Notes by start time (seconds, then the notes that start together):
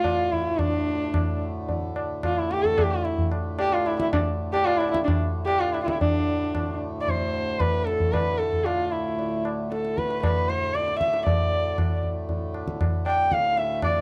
Already playing: D2 A2 F4
0.04 tabla na, tabla ge
0.32 E4, tabla ge
0.59 D4, tabla tin, tabla ge
1.14 tabla na, tabla ge
1.69 tabla tin, tabla ge
1.96 tabla na
2.23 F4, tabla na, tabla ge
2.38 E4
2.51 G4, tabla te
2.64 A4, tabla ge
2.78 G4, tabla na, tabla ge
2.91 F4
3.04 E4, tabla te
3.18 tabla ge
3.31 tabla na
3.59 G4, tabla na
3.72 F4, tabla na
3.86 E4, tabla na
3.99 E4, tabla ke
4.13 D4, tabla na, tabla ge
4.53 G4, tabla na
4.65 F4, tabla na
4.77 E4, tabla na
4.91 E4, tabla ke
5.04 D4, tabla na, tabla ge
5.45 G4, tabla na
5.60 F4, tabla na
5.73 E4, tabla na
5.83 F4
5.87 E4, tabla ke
6.01 D2 A2 D4, tabla tin, tabla ge
6.55 tabla na, tabla ge
7.01 D5
7.08 C5, tabla tin, tabla ge
7.60 B4, tabla na, tabla ge
7.86 A4, tabla te
8.00 tabla ge
8.12 B4, tabla na, tabla ge
8.38 A4, tabla te
8.53 tabla ge
8.65 F4, tabla na
8.92 E4
9.19 tabla tin
9.45 tabla na
9.72 A4, tabla te
9.85 tabla te
9.98 B4, tabla ke
10.10 tabla te
10.23 B4, tabla na, tabla ge
10.48 C5, tabla te
10.74 D5, tabla te
10.88 tabla te
10.99 E5, tabla ke
11.13 tabla te
11.26 D5, tabla tin, tabla ge
11.78 tabla na, tabla ge
12.03 tabla ge
12.29 tabla tin, tabla ge
12.54 tabla na
12.68 tabla ke
12.81 tabla na, tabla ge
13.06 G5, tabla na
13.32 F5, tabla ke
13.57 E5, tabla te
13.82 D5, tabla na, tabla ge